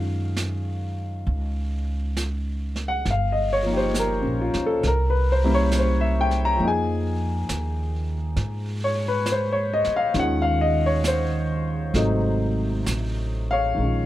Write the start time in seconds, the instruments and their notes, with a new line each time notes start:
Already playing: upright bass F#2, grand piano D#3 G#3 C#4 F4 F5
0.37 snare, hi-hat pedal
1.27 upright bass C#2, brush sweep
2.17 snare, hi-hat pedal
2.76 snare
2.88 grand piano F#5
3.05 upright bass G1, brush sweep, snare
3.11 grand piano F5
3.32 grand piano D#5
3.53 grand piano C#5
3.63 grand piano F3 A#3
3.70 grand piano D#4 G4
3.77 grand piano C5
3.94 snare, hi-hat pedal
3.99 grand piano A#4
4.22 upright bass A#1, grand piano C#4
4.41 grand piano F4
4.54 upright bass C#2, snare
4.66 grand piano A4
4.83 upright bass C2, brush sweep, snare
4.87 grand piano A#4
5.10 grand piano B4
5.32 grand piano C5
5.44 grand piano G3 A#3 C#4 E4
5.54 grand piano C#5
5.72 snare, hi-hat pedal
5.79 grand piano C5
6.01 grand piano E5
6.21 grand piano G5
6.31 snare
6.45 grand piano A#5
6.57 upright bass F2, grand piano F3 A#3
6.61 grand piano D#4 G5, brush sweep
6.67 grand piano G#4 G#5
7.49 upright bass D#2, snare, hi-hat pedal
8.36 upright bass G#2, brush sweep, snare
8.84 grand piano C#5
9.08 grand piano B4
9.26 snare, hi-hat pedal
9.32 grand piano C5
9.53 grand piano C#5
9.73 grand piano D#5
9.84 muted upright bass stroke, snare
9.96 grand piano F5
10.14 upright bass D#2, grand piano D#3 G#3 C#4 F4, brush sweep, snare
10.19 grand piano F#5
10.42 grand piano F5
10.61 grand piano D#5
10.86 grand piano C#5
11.04 grand piano C5, snare, hi-hat pedal
11.94 upright bass G#1, grand piano C3 F#3 A3 D#4, brush sweep, snare
12.86 upright bass A1, snare, hi-hat pedal
13.51 grand piano C#5 F5
13.75 upright bass A#1, grand piano D#3 G#3, brush sweep
13.81 grand piano C#4 F4